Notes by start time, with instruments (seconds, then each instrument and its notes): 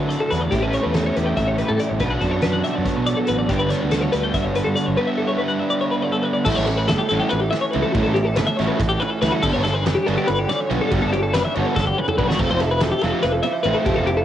Already playing: overdriven electric guitar D3 F#3 A3 D4, clean electric guitar D3 A3 C#4 F#4
0.00 fingered electric bass D3
0.09 clean electric guitar A2 A4 D5, closed hi-hat
0.20 clean electric guitar A4
0.30 fingered electric bass E2, clean electric guitar F#4 B4, snare, closed hi-hat
0.41 clean electric guitar D5
0.51 fingered electric bass A1, clean electric guitar A2 G4, overdriven electric guitar A2 E3 G3 C#4 E4, kick, closed hi-hat
0.62 clean electric guitar B4
0.73 clean electric guitar C#4 C#5, closed hi-hat
0.83 fingered electric bass E2, clean electric guitar B4
0.94 clean electric guitar E4 A4, snare, closed hi-hat
1.06 clean electric guitar C#5
1.16 fingered electric bass E2, clean electric guitar A3 G4 B4, closed hi-hat
1.26 clean electric guitar G5
1.37 fingered electric bass A1, clean electric guitar E4 E5, kick, closed hi-hat
1.48 clean electric guitar C#5
1.58 clean electric guitar E3 G4 B4, closed hi-hat
1.68 fingered electric bass A2, clean electric guitar A4
1.79 clean electric guitar E4 D5, closed hi-hat
1.89 fingered electric bass A1, clean electric guitar C#5
1.99 fingered electric bass B1, clean electric guitar B2 B4, overdriven electric guitar B2 F#3 B3 D4, kick, closed hi-hat
2.10 clean electric guitar F#5
2.21 fingered electric bass F#2, clean electric guitar D4 A4, kick, closed hi-hat
2.31 clean electric guitar C#5
2.41 fingered electric bass F#2, clean electric guitar F#4 B4, snare, closed hi-hat
2.53 clean electric guitar F#5
2.63 clean electric guitar B3 G4 E5, closed hi-hat
2.75 fingered electric bass F#2, clean electric guitar A4 D5
2.84 clean electric guitar F#4 C#5, kick, closed hi-hat
2.96 fingered electric bass B2, clean electric guitar B4
3.06 clean electric guitar F#3 A4 D5, closed hi-hat
3.17 clean electric guitar A4
3.27 fingered electric bass A1, clean electric guitar F#4 B4, closed hi-hat
3.39 clean electric guitar D5
3.48 fingered electric bass G1, clean electric guitar G2 G4, overdriven electric guitar G2 D3 G3 B3 D4, kick, closed hi-hat
3.59 clean electric guitar B4
3.69 clean electric guitar D4 C#5, snare, closed hi-hat
3.81 fingered electric bass D2, clean electric guitar B4
3.91 clean electric guitar F#4 A4, snare, closed hi-hat
4.01 clean electric guitar C#5
4.12 fingered electric bass D2, clean electric guitar G3 B4, closed hi-hat
4.24 clean electric guitar G5
4.34 fingered electric bass G1, clean electric guitar F#4 E5, kick, closed hi-hat
4.45 clean electric guitar C#5
4.55 clean electric guitar D3 B4, closed hi-hat
4.64 fingered electric bass G2, clean electric guitar A4
4.76 clean electric guitar F#4 D5, closed hi-hat
4.86 fingered electric bass G1, clean electric guitar C#5
4.97 clean electric guitar G2 B4, overdriven electric guitar G2 D3 G3 B3 D4
5.07 clean electric guitar E5
5.18 clean electric guitar E4 A4
5.28 clean electric guitar C#5
5.38 clean electric guitar B4
5.48 clean electric guitar F#5
5.60 clean electric guitar G3 B4 E5
5.70 clean electric guitar D5
5.81 clean electric guitar B4 C#5
5.91 clean electric guitar B4
6.03 clean electric guitar D3 C#5 D5
6.12 clean electric guitar A4
6.23 clean electric guitar B4
6.34 clean electric guitar D5
6.45 fingered electric bass A1, clean electric guitar A2 A3 C#4 F#4 G4 A4, overdriven electric guitar E3 G3 C#4 E4, kick, crash
6.55 fingered electric bass A1, clean electric guitar C#5
6.66 clean electric guitar C#4 A4, muted overdriven electric guitar stroke, ride
6.77 clean electric guitar B4
6.88 fingered electric bass G1, clean electric guitar A4, muted overdriven electric guitar stroke, snare, ride
6.98 clean electric guitar G4
7.09 fingered electric bass A1, overdriven electric guitar E3 G3 C#4 E4, clean electric guitar F#4 A4, ride
7.19 clean electric guitar G4
7.29 fingered electric bass A1, clean electric guitar E3 B4, muted overdriven electric guitar stroke, ride
7.40 clean electric guitar G4
7.50 clean electric guitar C#4 E5, muted overdriven electric guitar stroke, snare, ride
7.61 clean electric guitar C#5
7.71 overdriven electric guitar E3 G3, clean electric guitar A3 B4, ride
7.75 fingered electric bass C#2, overdriven electric guitar C#4 E4
7.82 clean electric guitar A4
7.92 fingered electric bass A1, clean electric guitar A2 F#4, kick, ride
7.97 overdriven electric guitar E3 G3 C#4 E4
8.03 clean electric guitar A4
8.07 fingered electric bass A1
8.14 clean electric guitar C#4 G4, ride
8.18 muted overdriven electric guitar stroke
8.25 clean electric guitar A4
8.36 fingered electric bass G1, clean electric guitar A4 B4, muted overdriven electric guitar stroke, snare, ride
8.47 clean electric guitar E5
8.57 fingered electric bass A1, overdriven electric guitar E3 G3 C#4 E4, clean electric guitar F#4 C#5, snare, ride
8.68 clean electric guitar B4
8.78 fingered electric bass A1, clean electric guitar E3 A4, muted overdriven electric guitar stroke, kick, snare, ride
8.89 clean electric guitar G4
9.00 clean electric guitar C#4 B4, muted overdriven electric guitar stroke, ride
9.10 clean electric guitar A4
9.22 fingered electric bass D2, overdriven electric guitar E3 G3 C#4 E4, clean electric guitar A3 B4, snare, ride
9.32 clean electric guitar F#4
9.43 fingered electric bass G1, clean electric guitar G2 A4, overdriven electric guitar D3 G3 B3 D4, kick, crash
9.53 fingered electric bass G1, clean electric guitar C#5
9.64 clean electric guitar C#4 A4, muted overdriven electric guitar stroke, snare, ride
9.74 clean electric guitar B4
9.84 fingered electric bass F#1, clean electric guitar A4 B4, muted overdriven electric guitar stroke, snare, ride
9.95 clean electric guitar G4
10.06 fingered electric bass G1, overdriven electric guitar D3 G3 B3 D4, clean electric guitar F#4 A4, ride
10.18 clean electric guitar G4
10.27 fingered electric bass G1, clean electric guitar D3 B4, muted overdriven electric guitar stroke, ride
10.39 clean electric guitar G4
10.49 clean electric guitar C#4 D5, muted overdriven electric guitar stroke, snare, ride
10.61 clean electric guitar C#5
10.68 fingered electric bass B1, overdriven electric guitar D3 G3 B3 D4, clean electric guitar G3 B4, ride
10.81 clean electric guitar A4
10.91 fingered electric bass G1, clean electric guitar G2 F#4, overdriven electric guitar D3 G3 B3 D4, kick, ride
11.02 fingered electric bass G1, clean electric guitar A4
11.13 clean electric guitar C#4 G4, muted overdriven electric guitar stroke, ride
11.23 clean electric guitar A4
11.34 fingered electric bass F#1, clean electric guitar B4, muted overdriven electric guitar stroke, snare, ride
11.45 clean electric guitar E5
11.55 fingered electric bass G1, overdriven electric guitar D3 G3 B3 D4, clean electric guitar F#4 C#5, ride
11.66 clean electric guitar B4
11.75 fingered electric bass G1, clean electric guitar D3 A4, kick, snare
11.80 muted overdriven electric guitar stroke
11.87 clean electric guitar G4, kick
11.96 clean electric guitar C#4 B4, muted overdriven electric guitar stroke
12.08 clean electric guitar A4, mid tom
12.17 fingered electric bass B1, overdriven electric guitar D3 G3, clean electric guitar G3 B4, kick
12.21 overdriven electric guitar B3 D4
12.29 clean electric guitar F#4, snare
12.38 fingered electric bass F1, overdriven electric guitar C3 F3, clean electric guitar F3 A4, kick, crash
12.42 overdriven electric guitar A3 C4
12.51 fingered electric bass F1, clean electric guitar C5
12.60 clean electric guitar E4 A4, muted overdriven electric guitar stroke, ride
12.71 clean electric guitar B4
12.80 fingered electric bass E1, clean electric guitar G4 A4, muted overdriven electric guitar stroke, snare, ride
12.91 clean electric guitar G4 A4
13.01 fingered electric bass F1, overdriven electric guitar C3 F3 A3 C4, clean electric guitar F4 A4, snare, ride
13.12 clean electric guitar G4
13.22 fingered electric bass F1, clean electric guitar F3 B4, muted overdriven electric guitar stroke, snare, ride
13.33 clean electric guitar A4
13.43 clean electric guitar E4 E5, muted overdriven electric guitar stroke, ride
13.53 clean electric guitar C5
13.63 fingered electric bass A1, overdriven electric guitar C3 F3 A3 C4, clean electric guitar A3 B4, ride
13.75 clean electric guitar A4
13.86 fingered electric bass F1, overdriven electric guitar C3 F3 A3 C4, clean electric guitar F3 G4, kick, ride
13.96 fingered electric bass F1, clean electric guitar A4
14.07 clean electric guitar E4 G4, muted overdriven electric guitar stroke, ride
14.17 clean electric guitar A4